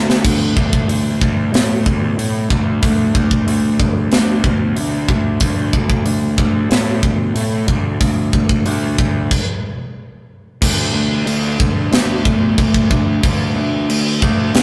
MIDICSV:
0, 0, Header, 1, 3, 480
1, 0, Start_track
1, 0, Tempo, 646552
1, 182, Time_signature, 4, 2, 24, 8
1, 5942, Tempo, 654308
1, 10802, End_track
2, 0, Start_track
2, 0, Title_t, "Picked electric bass"
2, 0, Program_c, 0, 34
2, 0, Note_on_c, 0, 38, 81
2, 171, Note_off_c, 0, 38, 0
2, 185, Note_on_c, 0, 38, 87
2, 414, Note_off_c, 0, 38, 0
2, 420, Note_on_c, 0, 38, 81
2, 651, Note_off_c, 0, 38, 0
2, 656, Note_on_c, 0, 38, 83
2, 889, Note_off_c, 0, 38, 0
2, 901, Note_on_c, 0, 38, 90
2, 1132, Note_off_c, 0, 38, 0
2, 1135, Note_on_c, 0, 45, 84
2, 1368, Note_off_c, 0, 45, 0
2, 1381, Note_on_c, 0, 38, 87
2, 1611, Note_off_c, 0, 38, 0
2, 1619, Note_on_c, 0, 45, 81
2, 1850, Note_off_c, 0, 45, 0
2, 1858, Note_on_c, 0, 38, 86
2, 2089, Note_off_c, 0, 38, 0
2, 2097, Note_on_c, 0, 38, 85
2, 2328, Note_off_c, 0, 38, 0
2, 2337, Note_on_c, 0, 38, 85
2, 2568, Note_off_c, 0, 38, 0
2, 2576, Note_on_c, 0, 38, 90
2, 2807, Note_off_c, 0, 38, 0
2, 2821, Note_on_c, 0, 38, 87
2, 3050, Note_off_c, 0, 38, 0
2, 3061, Note_on_c, 0, 38, 91
2, 3290, Note_off_c, 0, 38, 0
2, 3293, Note_on_c, 0, 38, 88
2, 3526, Note_off_c, 0, 38, 0
2, 3539, Note_on_c, 0, 38, 81
2, 3769, Note_off_c, 0, 38, 0
2, 3780, Note_on_c, 0, 38, 91
2, 4010, Note_off_c, 0, 38, 0
2, 4015, Note_on_c, 0, 38, 86
2, 4248, Note_off_c, 0, 38, 0
2, 4259, Note_on_c, 0, 38, 88
2, 4490, Note_off_c, 0, 38, 0
2, 4496, Note_on_c, 0, 38, 87
2, 4729, Note_off_c, 0, 38, 0
2, 4737, Note_on_c, 0, 38, 95
2, 4970, Note_off_c, 0, 38, 0
2, 4978, Note_on_c, 0, 45, 89
2, 5211, Note_off_c, 0, 45, 0
2, 5219, Note_on_c, 0, 38, 84
2, 5452, Note_off_c, 0, 38, 0
2, 5458, Note_on_c, 0, 45, 80
2, 5692, Note_off_c, 0, 45, 0
2, 5703, Note_on_c, 0, 38, 81
2, 5935, Note_off_c, 0, 38, 0
2, 5941, Note_on_c, 0, 38, 90
2, 6172, Note_off_c, 0, 38, 0
2, 6185, Note_on_c, 0, 38, 87
2, 6414, Note_off_c, 0, 38, 0
2, 6422, Note_on_c, 0, 38, 92
2, 6652, Note_off_c, 0, 38, 0
2, 6666, Note_on_c, 0, 38, 90
2, 6893, Note_off_c, 0, 38, 0
2, 7859, Note_on_c, 0, 38, 93
2, 8074, Note_off_c, 0, 38, 0
2, 8091, Note_on_c, 0, 38, 90
2, 8310, Note_off_c, 0, 38, 0
2, 8333, Note_on_c, 0, 38, 85
2, 8551, Note_off_c, 0, 38, 0
2, 8577, Note_on_c, 0, 38, 95
2, 8794, Note_off_c, 0, 38, 0
2, 8816, Note_on_c, 0, 38, 87
2, 9033, Note_off_c, 0, 38, 0
2, 9062, Note_on_c, 0, 38, 87
2, 9277, Note_off_c, 0, 38, 0
2, 9298, Note_on_c, 0, 38, 89
2, 9515, Note_off_c, 0, 38, 0
2, 9538, Note_on_c, 0, 38, 93
2, 9755, Note_off_c, 0, 38, 0
2, 9778, Note_on_c, 0, 38, 85
2, 9996, Note_off_c, 0, 38, 0
2, 10017, Note_on_c, 0, 38, 92
2, 10236, Note_off_c, 0, 38, 0
2, 10260, Note_on_c, 0, 38, 83
2, 10478, Note_off_c, 0, 38, 0
2, 10505, Note_on_c, 0, 38, 98
2, 10721, Note_off_c, 0, 38, 0
2, 10742, Note_on_c, 0, 38, 93
2, 10802, Note_off_c, 0, 38, 0
2, 10802, End_track
3, 0, Start_track
3, 0, Title_t, "Drums"
3, 73, Note_on_c, 9, 38, 77
3, 147, Note_off_c, 9, 38, 0
3, 182, Note_on_c, 9, 36, 112
3, 185, Note_on_c, 9, 46, 52
3, 185, Note_on_c, 9, 49, 85
3, 256, Note_off_c, 9, 36, 0
3, 259, Note_off_c, 9, 46, 0
3, 259, Note_off_c, 9, 49, 0
3, 421, Note_on_c, 9, 36, 83
3, 495, Note_off_c, 9, 36, 0
3, 542, Note_on_c, 9, 36, 84
3, 616, Note_off_c, 9, 36, 0
3, 663, Note_on_c, 9, 46, 52
3, 737, Note_off_c, 9, 46, 0
3, 902, Note_on_c, 9, 36, 84
3, 976, Note_off_c, 9, 36, 0
3, 1144, Note_on_c, 9, 46, 54
3, 1152, Note_on_c, 9, 38, 97
3, 1218, Note_off_c, 9, 46, 0
3, 1226, Note_off_c, 9, 38, 0
3, 1382, Note_on_c, 9, 36, 82
3, 1456, Note_off_c, 9, 36, 0
3, 1626, Note_on_c, 9, 46, 55
3, 1700, Note_off_c, 9, 46, 0
3, 1859, Note_on_c, 9, 36, 86
3, 1933, Note_off_c, 9, 36, 0
3, 2098, Note_on_c, 9, 46, 56
3, 2099, Note_on_c, 9, 36, 113
3, 2173, Note_off_c, 9, 46, 0
3, 2174, Note_off_c, 9, 36, 0
3, 2338, Note_on_c, 9, 36, 89
3, 2412, Note_off_c, 9, 36, 0
3, 2458, Note_on_c, 9, 36, 85
3, 2532, Note_off_c, 9, 36, 0
3, 2582, Note_on_c, 9, 46, 56
3, 2656, Note_off_c, 9, 46, 0
3, 2818, Note_on_c, 9, 36, 86
3, 2892, Note_off_c, 9, 36, 0
3, 3055, Note_on_c, 9, 46, 52
3, 3064, Note_on_c, 9, 38, 108
3, 3130, Note_off_c, 9, 46, 0
3, 3138, Note_off_c, 9, 38, 0
3, 3296, Note_on_c, 9, 36, 88
3, 3370, Note_off_c, 9, 36, 0
3, 3538, Note_on_c, 9, 46, 53
3, 3612, Note_off_c, 9, 46, 0
3, 3775, Note_on_c, 9, 36, 83
3, 3850, Note_off_c, 9, 36, 0
3, 4010, Note_on_c, 9, 46, 54
3, 4014, Note_on_c, 9, 36, 105
3, 4084, Note_off_c, 9, 46, 0
3, 4088, Note_off_c, 9, 36, 0
3, 4256, Note_on_c, 9, 36, 89
3, 4330, Note_off_c, 9, 36, 0
3, 4377, Note_on_c, 9, 36, 86
3, 4451, Note_off_c, 9, 36, 0
3, 4496, Note_on_c, 9, 46, 51
3, 4570, Note_off_c, 9, 46, 0
3, 4736, Note_on_c, 9, 36, 90
3, 4811, Note_off_c, 9, 36, 0
3, 4980, Note_on_c, 9, 46, 52
3, 4988, Note_on_c, 9, 38, 104
3, 5054, Note_off_c, 9, 46, 0
3, 5062, Note_off_c, 9, 38, 0
3, 5219, Note_on_c, 9, 36, 82
3, 5293, Note_off_c, 9, 36, 0
3, 5462, Note_on_c, 9, 46, 54
3, 5536, Note_off_c, 9, 46, 0
3, 5702, Note_on_c, 9, 36, 77
3, 5777, Note_off_c, 9, 36, 0
3, 5944, Note_on_c, 9, 36, 106
3, 5945, Note_on_c, 9, 46, 54
3, 6018, Note_off_c, 9, 36, 0
3, 6018, Note_off_c, 9, 46, 0
3, 6183, Note_on_c, 9, 36, 90
3, 6256, Note_off_c, 9, 36, 0
3, 6301, Note_on_c, 9, 36, 84
3, 6375, Note_off_c, 9, 36, 0
3, 6421, Note_on_c, 9, 46, 54
3, 6494, Note_off_c, 9, 46, 0
3, 6662, Note_on_c, 9, 36, 85
3, 6735, Note_off_c, 9, 36, 0
3, 6900, Note_on_c, 9, 49, 86
3, 6901, Note_on_c, 9, 36, 94
3, 6974, Note_off_c, 9, 49, 0
3, 6975, Note_off_c, 9, 36, 0
3, 7860, Note_on_c, 9, 36, 107
3, 7861, Note_on_c, 9, 49, 115
3, 7861, Note_on_c, 9, 57, 56
3, 7934, Note_off_c, 9, 36, 0
3, 7934, Note_off_c, 9, 49, 0
3, 7934, Note_off_c, 9, 57, 0
3, 8338, Note_on_c, 9, 57, 59
3, 8411, Note_off_c, 9, 57, 0
3, 8579, Note_on_c, 9, 36, 96
3, 8653, Note_off_c, 9, 36, 0
3, 8818, Note_on_c, 9, 57, 57
3, 8826, Note_on_c, 9, 38, 99
3, 8891, Note_off_c, 9, 57, 0
3, 8899, Note_off_c, 9, 38, 0
3, 9060, Note_on_c, 9, 36, 88
3, 9133, Note_off_c, 9, 36, 0
3, 9299, Note_on_c, 9, 36, 86
3, 9300, Note_on_c, 9, 57, 62
3, 9373, Note_off_c, 9, 36, 0
3, 9373, Note_off_c, 9, 57, 0
3, 9420, Note_on_c, 9, 36, 80
3, 9493, Note_off_c, 9, 36, 0
3, 9539, Note_on_c, 9, 36, 83
3, 9613, Note_off_c, 9, 36, 0
3, 9777, Note_on_c, 9, 57, 63
3, 9780, Note_on_c, 9, 36, 109
3, 9850, Note_off_c, 9, 57, 0
3, 9853, Note_off_c, 9, 36, 0
3, 10265, Note_on_c, 9, 57, 66
3, 10338, Note_off_c, 9, 57, 0
3, 10504, Note_on_c, 9, 36, 92
3, 10577, Note_off_c, 9, 36, 0
3, 10740, Note_on_c, 9, 57, 64
3, 10748, Note_on_c, 9, 38, 108
3, 10802, Note_off_c, 9, 38, 0
3, 10802, Note_off_c, 9, 57, 0
3, 10802, End_track
0, 0, End_of_file